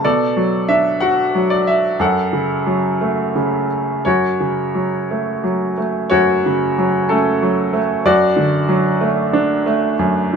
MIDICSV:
0, 0, Header, 1, 2, 480
1, 0, Start_track
1, 0, Key_signature, 3, "minor"
1, 0, Tempo, 655022
1, 31, Time_signature, 6, 3, 24, 8
1, 1952, Tempo, 696056
1, 3392, Tempo, 674157
1, 4832, Tempo, 635593
1, 6272, Tempo, 654308
1, 7507, End_track
2, 0, Start_track
2, 0, Title_t, "Grand piano"
2, 0, Program_c, 0, 0
2, 0, Control_c, 0, 64, 127
2, 32, Note_on_c, 0, 69, 60
2, 34, Note_on_c, 0, 74, 78
2, 37, Note_on_c, 0, 47, 53
2, 41, Control_c, 0, 64, 0
2, 152, Control_c, 0, 64, 127
2, 268, Note_on_c, 0, 54, 47
2, 502, Note_on_c, 0, 76, 69
2, 503, Note_on_c, 0, 62, 44
2, 515, Note_off_c, 0, 74, 0
2, 708, Note_off_c, 0, 69, 0
2, 736, Note_on_c, 0, 78, 75
2, 745, Note_off_c, 0, 76, 0
2, 748, Note_on_c, 0, 66, 50
2, 977, Note_off_c, 0, 54, 0
2, 988, Note_on_c, 0, 54, 50
2, 1101, Note_on_c, 0, 74, 72
2, 1107, Note_off_c, 0, 78, 0
2, 1223, Note_off_c, 0, 74, 0
2, 1226, Note_on_c, 0, 76, 69
2, 1432, Note_off_c, 0, 62, 0
2, 1433, Note_off_c, 0, 47, 0
2, 1443, Note_off_c, 0, 66, 0
2, 1451, Note_off_c, 0, 54, 0
2, 1463, Note_on_c, 0, 42, 58
2, 1469, Control_c, 0, 64, 0
2, 1471, Note_off_c, 0, 76, 0
2, 1471, Note_on_c, 0, 69, 57
2, 1471, Note_on_c, 0, 78, 71
2, 1577, Control_c, 0, 64, 127
2, 1706, Note_on_c, 0, 49, 45
2, 1954, Note_on_c, 0, 54, 41
2, 2192, Note_on_c, 0, 57, 47
2, 2418, Note_off_c, 0, 49, 0
2, 2428, Note_on_c, 0, 49, 49
2, 2646, Note_off_c, 0, 69, 0
2, 2646, Note_off_c, 0, 78, 0
2, 2884, Note_off_c, 0, 54, 0
2, 2885, Note_off_c, 0, 42, 0
2, 2891, Note_off_c, 0, 57, 0
2, 2897, Note_off_c, 0, 49, 0
2, 2907, Note_on_c, 0, 73, 65
2, 2913, Note_on_c, 0, 42, 45
2, 2920, Control_c, 0, 64, 0
2, 2922, Note_on_c, 0, 66, 46
2, 3025, Control_c, 0, 64, 127
2, 3152, Note_on_c, 0, 49, 38
2, 3388, Note_on_c, 0, 54, 39
2, 3645, Note_on_c, 0, 57, 43
2, 3870, Note_off_c, 0, 54, 0
2, 3880, Note_on_c, 0, 54, 43
2, 4088, Note_off_c, 0, 49, 0
2, 4111, Note_off_c, 0, 57, 0
2, 4122, Note_on_c, 0, 57, 43
2, 4331, Note_off_c, 0, 42, 0
2, 4335, Note_off_c, 0, 66, 0
2, 4338, Note_off_c, 0, 73, 0
2, 4349, Note_on_c, 0, 73, 81
2, 4358, Note_on_c, 0, 66, 59
2, 4363, Note_on_c, 0, 42, 52
2, 4607, Note_on_c, 0, 49, 45
2, 4805, Note_off_c, 0, 54, 0
2, 4838, Note_on_c, 0, 54, 44
2, 5048, Note_off_c, 0, 66, 0
2, 5050, Note_off_c, 0, 57, 0
2, 5071, Note_on_c, 0, 69, 71
2, 5077, Note_on_c, 0, 61, 51
2, 5088, Note_on_c, 0, 57, 54
2, 5095, Note_off_c, 0, 73, 0
2, 5311, Note_off_c, 0, 54, 0
2, 5323, Note_on_c, 0, 54, 46
2, 5536, Note_off_c, 0, 49, 0
2, 5544, Note_off_c, 0, 57, 0
2, 5556, Note_on_c, 0, 57, 51
2, 5585, Note_off_c, 0, 69, 0
2, 5588, Note_off_c, 0, 61, 0
2, 5768, Note_off_c, 0, 42, 0
2, 5782, Note_off_c, 0, 54, 0
2, 5786, Note_off_c, 0, 57, 0
2, 5798, Note_on_c, 0, 42, 59
2, 5800, Note_on_c, 0, 74, 88
2, 5805, Control_c, 0, 64, 0
2, 5805, Note_on_c, 0, 66, 64
2, 5956, Control_c, 0, 64, 127
2, 6033, Note_on_c, 0, 50, 50
2, 6276, Note_on_c, 0, 54, 53
2, 6514, Note_on_c, 0, 57, 56
2, 6751, Note_on_c, 0, 62, 58
2, 6960, Note_off_c, 0, 50, 0
2, 6981, Note_off_c, 0, 57, 0
2, 6992, Note_on_c, 0, 57, 57
2, 7201, Note_off_c, 0, 42, 0
2, 7202, Note_off_c, 0, 54, 0
2, 7233, Note_on_c, 0, 42, 58
2, 7484, Note_on_c, 0, 50, 47
2, 7507, Note_off_c, 0, 42, 0
2, 7507, Note_off_c, 0, 50, 0
2, 7507, Note_off_c, 0, 57, 0
2, 7507, Note_off_c, 0, 62, 0
2, 7507, Note_off_c, 0, 66, 0
2, 7507, Note_off_c, 0, 74, 0
2, 7507, End_track
0, 0, End_of_file